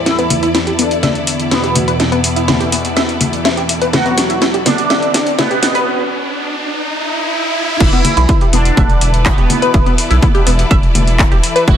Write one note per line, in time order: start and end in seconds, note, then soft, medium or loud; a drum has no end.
0.00 5.87 E4 medium
0.00 5.87 A4 medium
0.00 5.87 D5 medium
0.00 5.87 E5 medium
0.06 5.83 E2 medium
0.06 5.87 E2 medium
0.06 5.87 B2 medium
0.06 0.69 E3 medium
0.06 5.83 E3 medium
0.06 5.83 B3 medium
0.06 0.10 E4 medium
0.06 0.69 E4 loud
0.06 snare soft
0.06 closed hi-hat soft
0.06 riser medium
0.19 0.27 B3 loud
0.19 closed hi-hat soft
0.30 open hi-hat loud
0.30 low conga medium
0.43 0.48 E4 loud
0.43 closed hi-hat soft
0.55 0.58 E4 loud
0.55 snare medium
0.55 closed hi-hat soft
0.67 0.72 G4 medium
0.67 closed hi-hat soft
0.79 1.42 D3 medium
0.79 0.82 B3 medium
0.79 1.42 D4 loud
0.79 open hi-hat loud
0.91 closed hi-hat soft
1.03 1.09 E5 loud
1.03 snare medium
1.03 closed hi-hat soft
1.03 low conga medium
1.15 closed hi-hat soft
1.27 open hi-hat loud
1.40 closed hi-hat soft
1.51 2.14 B2 medium
1.51 2.14 B3 loud
1.51 1.55 E4 loud
1.51 snare medium
1.51 closed hi-hat soft
1.64 1.69 G4 medium
1.64 closed hi-hat soft
1.76 open hi-hat loud
1.76 low conga medium
1.88 1.96 B4 loud
1.88 closed hi-hat soft
2.00 2.03 E4 medium
2.00 snare medium
2.00 closed hi-hat soft
2.12 2.20 B3 loud
2.12 closed hi-hat soft
2.24 open hi-hat loud
2.36 2.42 E4 loud
2.36 closed hi-hat soft
2.48 2.52 E4 loud
2.48 snare medium
2.48 closed hi-hat soft
2.48 low conga medium
2.60 2.66 G4 medium
2.60 closed hi-hat soft
2.72 2.76 B3 medium
2.72 open hi-hat loud
2.85 closed hi-hat soft
2.96 3.02 E5 loud
2.96 snare medium
2.96 closed hi-hat soft
3.09 closed hi-hat soft
3.21 open hi-hat loud
3.21 low conga medium
3.33 closed hi-hat soft
3.45 3.48 E4 loud
3.45 snare medium
3.45 closed hi-hat soft
3.57 3.63 G4 medium
3.57 closed hi-hat soft
3.69 open hi-hat loud
3.82 3.90 B4 loud
3.82 closed hi-hat soft
3.93 4.56 F#3 medium
3.93 3.97 E4 medium
3.93 4.56 F#4 loud
3.93 snare medium
3.93 closed hi-hat soft
3.93 low conga medium
4.06 4.14 B3 loud
4.06 closed hi-hat soft
4.18 snare medium
4.18 open hi-hat loud
4.30 4.35 E4 loud
4.30 closed hi-hat soft
4.42 4.45 E4 loud
4.42 snare medium
4.42 closed hi-hat soft
4.54 4.60 G4 medium
4.54 closed hi-hat soft
4.66 5.29 D3 medium
4.66 4.69 B3 medium
4.66 5.29 D4 loud
4.66 snare medium
4.66 open hi-hat loud
4.66 low conga medium
4.78 closed hi-hat soft
4.90 4.96 E5 loud
4.90 snare medium
4.90 closed hi-hat soft
5.02 closed hi-hat soft
5.14 snare medium
5.14 open hi-hat loud
5.27 closed hi-hat soft
5.38 6.02 B2 medium
5.38 6.02 B3 loud
5.38 5.42 E4 loud
5.38 snare medium
5.38 closed hi-hat soft
5.38 low conga medium
5.51 5.56 G4 medium
5.51 closed hi-hat soft
5.63 snare medium
5.63 open hi-hat loud
5.75 5.83 B4 loud
5.75 closed hi-hat soft
6.84 swell medium
7.80 7.89 E1 loud
7.80 11.77 E3 medium
7.80 8.44 E3 medium
7.80 11.77 E4 medium
7.80 8.44 E4 loud
7.80 7.84 E4 medium
7.80 11.77 E4 medium
7.80 11.64 B4 medium
7.80 kick loud
7.80 closed hi-hat soft
7.80 crash loud
7.93 8.01 B3 loud
7.93 closed hi-hat soft
8.05 11.77 D5 medium
8.05 open hi-hat loud
8.05 low conga medium
8.17 8.26 B1 medium
8.17 8.23 E4 loud
8.17 11.77 A4 medium
8.17 closed hi-hat soft
8.29 8.32 E4 loud
8.29 kick loud
8.29 closed hi-hat soft
8.41 8.47 G4 medium
8.41 closed hi-hat soft
8.53 8.71 E1 medium
8.53 9.16 D3 medium
8.53 8.57 B3 medium
8.53 9.16 D4 loud
8.53 open hi-hat loud
8.65 closed hi-hat soft
8.77 8.95 E1 medium
8.77 8.83 E5 loud
8.77 kick loud
8.77 closed hi-hat soft
8.77 low conga medium
8.90 closed hi-hat soft
8.96 11.77 E5 medium
9.01 9.33 E1 medium
9.01 open hi-hat loud
9.14 closed hi-hat soft
9.26 9.89 B2 medium
9.26 9.89 B3 loud
9.26 9.29 E4 loud
9.26 kick loud
9.26 clap loud
9.26 closed hi-hat medium
9.38 9.47 E1 medium
9.38 9.44 G4 medium
9.38 closed hi-hat soft
9.50 open hi-hat loud
9.50 low conga medium
9.62 9.70 B4 loud
9.62 closed hi-hat soft
9.74 9.83 E1 loud
9.74 9.77 E4 medium
9.74 kick loud
9.74 closed hi-hat soft
9.86 9.95 B3 loud
9.86 closed hi-hat soft
9.98 open hi-hat loud
10.11 10.19 B1 medium
10.11 10.16 E4 loud
10.11 closed hi-hat soft
10.22 10.26 E4 loud
10.22 kick loud
10.22 closed hi-hat soft
10.22 low conga medium
10.35 10.40 G4 medium
10.35 closed hi-hat soft
10.47 10.64 E1 medium
10.47 10.50 B3 medium
10.47 open hi-hat loud
10.59 closed hi-hat soft
10.71 10.89 E1 medium
10.71 10.76 E5 loud
10.71 kick loud
10.71 closed hi-hat soft
10.83 closed hi-hat soft
10.95 11.26 E1 medium
10.95 open hi-hat loud
10.95 low conga medium
11.07 closed hi-hat soft
11.19 11.23 E4 loud
11.19 kick loud
11.19 clap loud
11.19 closed hi-hat soft
11.31 11.40 E1 medium
11.31 11.37 G4 medium
11.31 closed hi-hat soft
11.43 open hi-hat loud
11.56 11.64 B4 loud
11.56 closed hi-hat soft
11.68 11.77 E1 loud
11.68 11.77 F#3 medium
11.68 11.71 E4 medium
11.68 11.77 F#4 loud
11.68 11.77 A4 loud
11.68 kick loud
11.68 closed hi-hat soft
11.68 low conga medium